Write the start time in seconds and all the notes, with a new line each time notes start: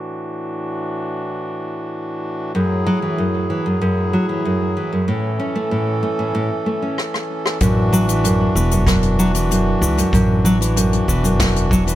Already playing: A2 E3 D4 F#4
2.55 F#2 F#3 E4 G#4
2.86 F#3
3.02 E3
3.18 F#2
3.50 E3
3.66 F#2
3.81 F#2
4.13 F#3
4.29 E3
4.45 F#2
4.77 E3
4.93 F#2
5.08 A2 E3 C#4 A4
5.40 C#4
5.56 A3
5.71 A2
6.03 A3
6.19 A2
6.35 A2
6.66 A3
6.82 C#4
6.98 cross-stick
7.14 cross-stick
7.46 cross-stick
7.61 A1 F#2 E3 D4 F#4, kick, closed hi-hat, cabasa
7.93 F#3, cabasa
8.09 E3, closed hi-hat, cabasa
8.24 F#2, closed hi-hat, cabasa
8.55 E1 E3, cabasa
8.71 F#2, closed hi-hat, cabasa
8.87 F#2, kick, snare, closed hi-hat, cabasa
9.03 closed hi-hat
9.19 F#3, cabasa
9.34 E3, closed hi-hat, cabasa
9.51 F#2, closed hi-hat, cabasa
9.81 C#2 E3, cabasa
9.98 F#2, closed hi-hat, cabasa
10.13 A1 F#2, kick, closed hi-hat, cabasa
10.45 F#3, cabasa
10.61 E3, closed hi-hat, cabasa
10.76 F#2, closed hi-hat, cabasa
10.93 closed hi-hat
11.08 E1 E3, kick, cabasa
11.24 F#2, closed hi-hat, cabasa
11.40 F#2, kick, snare, closed hi-hat, cabasa
11.56 closed hi-hat
11.71 F#3, kick, cabasa
11.87 E3, closed hi-hat, cabasa